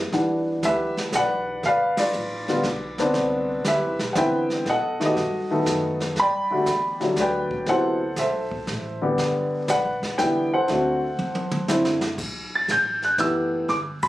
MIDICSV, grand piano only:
0, 0, Header, 1, 2, 480
1, 0, Start_track
1, 0, Key_signature, 1, "major"
1, 0, Tempo, 502513
1, 123, Time_signature, 3, 2, 24, 8
1, 13452, End_track
2, 0, Start_track
2, 0, Title_t, "Grand piano"
2, 0, Program_c, 0, 0
2, 118, Note_on_c, 0, 52, 55
2, 124, Note_on_c, 0, 55, 51
2, 124, Note_on_c, 0, 62, 51
2, 130, Note_on_c, 0, 78, 57
2, 623, Note_on_c, 0, 76, 84
2, 639, Note_on_c, 0, 71, 60
2, 645, Note_on_c, 0, 67, 59
2, 1062, Note_off_c, 0, 76, 0
2, 1089, Note_off_c, 0, 78, 0
2, 1104, Note_on_c, 0, 78, 99
2, 1113, Note_off_c, 0, 71, 0
2, 1127, Note_on_c, 0, 71, 69
2, 1129, Note_on_c, 0, 74, 67
2, 1397, Note_off_c, 0, 67, 0
2, 1472, Note_off_c, 0, 52, 0
2, 1475, Note_off_c, 0, 55, 0
2, 1475, Note_off_c, 0, 62, 0
2, 1542, Note_off_c, 0, 78, 0
2, 1554, Note_off_c, 0, 71, 0
2, 1556, Note_off_c, 0, 74, 0
2, 1582, Note_on_c, 0, 77, 103
2, 1599, Note_on_c, 0, 71, 77
2, 1602, Note_on_c, 0, 74, 75
2, 1886, Note_off_c, 0, 74, 0
2, 1897, Note_off_c, 0, 71, 0
2, 1900, Note_on_c, 0, 74, 89
2, 1911, Note_on_c, 0, 65, 58
2, 1912, Note_on_c, 0, 71, 53
2, 1913, Note_off_c, 0, 77, 0
2, 2369, Note_off_c, 0, 65, 0
2, 2373, Note_on_c, 0, 50, 73
2, 2375, Note_on_c, 0, 55, 69
2, 2379, Note_on_c, 0, 59, 66
2, 2383, Note_on_c, 0, 65, 81
2, 2510, Note_off_c, 0, 50, 0
2, 2511, Note_off_c, 0, 55, 0
2, 2513, Note_off_c, 0, 59, 0
2, 2515, Note_off_c, 0, 65, 0
2, 2820, Note_off_c, 0, 74, 0
2, 2826, Note_off_c, 0, 71, 0
2, 2858, Note_on_c, 0, 50, 69
2, 2860, Note_on_c, 0, 59, 72
2, 2864, Note_on_c, 0, 60, 69
2, 2871, Note_on_c, 0, 62, 83
2, 3458, Note_off_c, 0, 50, 0
2, 3459, Note_off_c, 0, 59, 0
2, 3461, Note_off_c, 0, 60, 0
2, 3464, Note_off_c, 0, 62, 0
2, 3514, Note_on_c, 0, 76, 84
2, 3529, Note_on_c, 0, 71, 63
2, 3530, Note_on_c, 0, 67, 59
2, 3945, Note_on_c, 0, 78, 70
2, 3951, Note_off_c, 0, 76, 0
2, 3965, Note_on_c, 0, 50, 69
2, 3967, Note_on_c, 0, 59, 62
2, 3975, Note_on_c, 0, 60, 62
2, 3975, Note_on_c, 0, 64, 78
2, 3977, Note_off_c, 0, 78, 0
2, 3982, Note_off_c, 0, 71, 0
2, 3990, Note_on_c, 0, 79, 91
2, 3996, Note_on_c, 0, 71, 67
2, 3998, Note_on_c, 0, 76, 72
2, 4279, Note_off_c, 0, 67, 0
2, 4429, Note_off_c, 0, 71, 0
2, 4430, Note_off_c, 0, 76, 0
2, 4446, Note_off_c, 0, 50, 0
2, 4447, Note_off_c, 0, 59, 0
2, 4451, Note_off_c, 0, 60, 0
2, 4451, Note_off_c, 0, 64, 0
2, 4472, Note_off_c, 0, 79, 0
2, 4484, Note_on_c, 0, 75, 73
2, 4486, Note_on_c, 0, 78, 98
2, 4491, Note_on_c, 0, 69, 71
2, 4774, Note_on_c, 0, 51, 64
2, 4779, Note_on_c, 0, 57, 57
2, 4782, Note_on_c, 0, 59, 57
2, 4782, Note_on_c, 0, 67, 68
2, 4805, Note_off_c, 0, 78, 0
2, 4811, Note_off_c, 0, 75, 0
2, 4813, Note_off_c, 0, 69, 0
2, 4825, Note_on_c, 0, 75, 77
2, 4827, Note_on_c, 0, 69, 58
2, 4829, Note_on_c, 0, 66, 53
2, 4911, Note_off_c, 0, 51, 0
2, 4913, Note_off_c, 0, 57, 0
2, 4914, Note_off_c, 0, 59, 0
2, 4915, Note_off_c, 0, 67, 0
2, 5256, Note_off_c, 0, 69, 0
2, 5261, Note_on_c, 0, 51, 66
2, 5262, Note_on_c, 0, 57, 64
2, 5266, Note_on_c, 0, 59, 57
2, 5270, Note_on_c, 0, 69, 69
2, 5722, Note_off_c, 0, 75, 0
2, 5724, Note_off_c, 0, 66, 0
2, 5859, Note_off_c, 0, 51, 0
2, 5859, Note_off_c, 0, 57, 0
2, 5861, Note_off_c, 0, 59, 0
2, 5863, Note_off_c, 0, 69, 0
2, 5918, Note_on_c, 0, 83, 104
2, 5931, Note_on_c, 0, 79, 73
2, 5938, Note_on_c, 0, 74, 76
2, 6212, Note_on_c, 0, 50, 68
2, 6219, Note_on_c, 0, 55, 67
2, 6222, Note_on_c, 0, 57, 65
2, 6226, Note_on_c, 0, 66, 74
2, 6349, Note_off_c, 0, 50, 0
2, 6352, Note_off_c, 0, 55, 0
2, 6354, Note_off_c, 0, 57, 0
2, 6356, Note_off_c, 0, 66, 0
2, 6672, Note_off_c, 0, 83, 0
2, 6679, Note_off_c, 0, 79, 0
2, 6682, Note_off_c, 0, 74, 0
2, 6687, Note_on_c, 0, 50, 64
2, 6693, Note_on_c, 0, 55, 62
2, 6695, Note_on_c, 0, 57, 55
2, 6697, Note_on_c, 0, 54, 69
2, 6876, Note_on_c, 0, 74, 71
2, 6880, Note_on_c, 0, 71, 71
2, 6889, Note_on_c, 0, 79, 91
2, 7291, Note_off_c, 0, 50, 0
2, 7294, Note_off_c, 0, 55, 0
2, 7294, Note_off_c, 0, 57, 0
2, 7296, Note_off_c, 0, 54, 0
2, 7307, Note_off_c, 0, 74, 0
2, 7309, Note_off_c, 0, 71, 0
2, 7329, Note_on_c, 0, 48, 65
2, 7336, Note_on_c, 0, 54, 57
2, 7337, Note_on_c, 0, 59, 57
2, 7341, Note_on_c, 0, 64, 68
2, 7347, Note_on_c, 0, 78, 93
2, 7350, Note_on_c, 0, 69, 71
2, 7353, Note_on_c, 0, 72, 73
2, 7360, Note_off_c, 0, 79, 0
2, 7623, Note_off_c, 0, 48, 0
2, 7626, Note_off_c, 0, 54, 0
2, 7627, Note_off_c, 0, 59, 0
2, 7629, Note_off_c, 0, 64, 0
2, 7819, Note_off_c, 0, 72, 0
2, 7822, Note_off_c, 0, 69, 0
2, 7823, Note_on_c, 0, 76, 75
2, 7829, Note_off_c, 0, 78, 0
2, 7833, Note_on_c, 0, 72, 52
2, 7836, Note_on_c, 0, 69, 57
2, 8583, Note_off_c, 0, 76, 0
2, 8588, Note_off_c, 0, 72, 0
2, 8590, Note_off_c, 0, 69, 0
2, 8613, Note_on_c, 0, 50, 72
2, 8616, Note_on_c, 0, 55, 66
2, 8623, Note_on_c, 0, 59, 62
2, 8626, Note_on_c, 0, 67, 72
2, 9212, Note_off_c, 0, 50, 0
2, 9213, Note_off_c, 0, 55, 0
2, 9217, Note_off_c, 0, 59, 0
2, 9218, Note_off_c, 0, 67, 0
2, 9259, Note_on_c, 0, 74, 62
2, 9262, Note_on_c, 0, 71, 63
2, 9266, Note_on_c, 0, 78, 90
2, 9700, Note_off_c, 0, 78, 0
2, 9723, Note_on_c, 0, 79, 97
2, 9727, Note_on_c, 0, 50, 62
2, 9728, Note_on_c, 0, 55, 61
2, 9734, Note_on_c, 0, 59, 60
2, 9738, Note_on_c, 0, 64, 71
2, 10020, Note_off_c, 0, 50, 0
2, 10020, Note_off_c, 0, 55, 0
2, 10020, Note_off_c, 0, 74, 0
2, 10022, Note_off_c, 0, 71, 0
2, 10023, Note_off_c, 0, 59, 0
2, 10025, Note_off_c, 0, 64, 0
2, 10028, Note_off_c, 0, 79, 0
2, 10064, Note_on_c, 0, 78, 92
2, 10069, Note_on_c, 0, 72, 65
2, 10074, Note_on_c, 0, 69, 63
2, 10207, Note_on_c, 0, 50, 68
2, 10211, Note_on_c, 0, 57, 58
2, 10217, Note_on_c, 0, 66, 69
2, 10218, Note_on_c, 0, 60, 62
2, 10499, Note_off_c, 0, 50, 0
2, 10502, Note_off_c, 0, 57, 0
2, 10505, Note_off_c, 0, 60, 0
2, 10505, Note_off_c, 0, 66, 0
2, 11161, Note_on_c, 0, 50, 64
2, 11163, Note_on_c, 0, 57, 59
2, 11168, Note_on_c, 0, 60, 59
2, 11172, Note_on_c, 0, 64, 73
2, 11456, Note_off_c, 0, 50, 0
2, 11457, Note_off_c, 0, 57, 0
2, 11458, Note_off_c, 0, 78, 0
2, 11460, Note_off_c, 0, 60, 0
2, 11460, Note_off_c, 0, 72, 0
2, 11462, Note_off_c, 0, 64, 0
2, 11462, Note_off_c, 0, 69, 0
2, 11992, Note_on_c, 0, 93, 79
2, 12135, Note_off_c, 0, 93, 0
2, 12142, Note_on_c, 0, 91, 81
2, 12438, Note_off_c, 0, 91, 0
2, 12460, Note_on_c, 0, 90, 69
2, 12590, Note_on_c, 0, 52, 53
2, 12597, Note_on_c, 0, 57, 50
2, 12598, Note_on_c, 0, 59, 51
2, 12599, Note_on_c, 0, 67, 61
2, 12610, Note_off_c, 0, 90, 0
2, 12612, Note_on_c, 0, 88, 75
2, 13054, Note_off_c, 0, 88, 0
2, 13076, Note_off_c, 0, 52, 0
2, 13076, Note_on_c, 0, 86, 78
2, 13080, Note_off_c, 0, 57, 0
2, 13080, Note_off_c, 0, 59, 0
2, 13081, Note_off_c, 0, 67, 0
2, 13151, Note_off_c, 0, 86, 0
2, 13400, Note_on_c, 0, 83, 83
2, 13452, Note_off_c, 0, 83, 0
2, 13452, End_track
0, 0, End_of_file